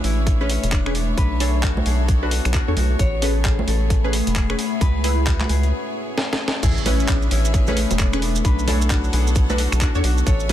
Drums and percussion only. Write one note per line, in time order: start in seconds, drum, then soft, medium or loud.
0.04 open hi-hat medium
0.27 kick loud
0.27 closed hi-hat medium
0.50 open hi-hat loud
0.64 closed hi-hat medium
0.72 kick loud
0.72 clap loud
0.72 closed hi-hat medium
0.86 finger snap medium
0.95 open hi-hat medium
1.18 kick loud
1.18 closed hi-hat medium
1.40 open hi-hat loud
1.63 kick loud
1.63 clap loud
1.63 closed hi-hat medium
1.77 high conga medium
1.86 open hi-hat medium
2.08 kick loud
2.08 closed hi-hat medium
2.31 open hi-hat loud
2.45 finger snap medium
2.45 closed hi-hat medium
2.54 kick loud
2.54 clap loud
2.54 closed hi-hat medium
2.77 open hi-hat medium
2.77 high conga medium
2.99 kick loud
2.99 closed hi-hat medium
3.22 open hi-hat loud
3.45 kick loud
3.45 clap loud
3.45 closed hi-hat medium
3.59 high conga medium
3.68 open hi-hat medium
3.90 kick loud
3.90 closed hi-hat medium
4.13 open hi-hat loud
4.27 closed hi-hat medium
4.36 kick loud
4.36 clap loud
4.36 closed hi-hat medium
4.50 finger snap medium
4.59 open hi-hat loud
4.81 kick loud
4.81 closed hi-hat medium
5.04 open hi-hat loud
5.27 kick loud
5.27 clap loud
5.27 closed hi-hat medium
5.41 finger snap medium
5.41 clap medium
5.41 high conga medium
5.49 open hi-hat loud
5.63 closed hi-hat soft
6.18 snare medium
6.33 snare medium
6.48 snare medium
6.63 kick loud
6.63 closed hi-hat medium
6.63 crash loud
6.63 maracas medium
6.77 maracas soft
6.86 open hi-hat loud
6.86 high conga medium
7.00 maracas medium
7.08 kick loud
7.08 clap loud
7.08 closed hi-hat medium
7.08 maracas medium
7.22 maracas soft
7.31 open hi-hat loud
7.45 maracas medium
7.54 kick loud
7.54 closed hi-hat medium
7.54 maracas medium
7.67 high conga medium
7.67 maracas soft
7.77 open hi-hat loud
7.91 closed hi-hat medium
7.91 high conga medium
7.91 maracas medium
7.99 kick loud
7.99 clap loud
7.99 closed hi-hat medium
7.99 maracas medium
8.13 finger snap medium
8.13 maracas soft
8.22 open hi-hat loud
8.36 maracas medium
8.45 kick loud
8.45 closed hi-hat medium
8.45 maracas medium
8.59 maracas soft
8.68 open hi-hat loud
8.68 high conga medium
8.82 maracas medium
8.90 kick loud
8.90 clap loud
8.90 closed hi-hat medium
8.90 maracas medium
9.04 maracas soft
9.13 open hi-hat loud
9.27 maracas medium
9.35 kick loud
9.35 closed hi-hat medium
9.35 maracas medium
9.50 high conga medium
9.50 maracas soft
9.58 open hi-hat loud
9.72 finger snap medium
9.72 closed hi-hat medium
9.72 maracas medium
9.81 kick loud
9.81 clap loud
9.81 closed hi-hat medium
9.81 maracas medium
9.95 maracas soft
10.04 open hi-hat medium
10.18 maracas medium
10.27 kick loud
10.27 closed hi-hat medium
10.27 maracas medium
10.40 maracas soft
10.49 open hi-hat loud
10.49 high conga medium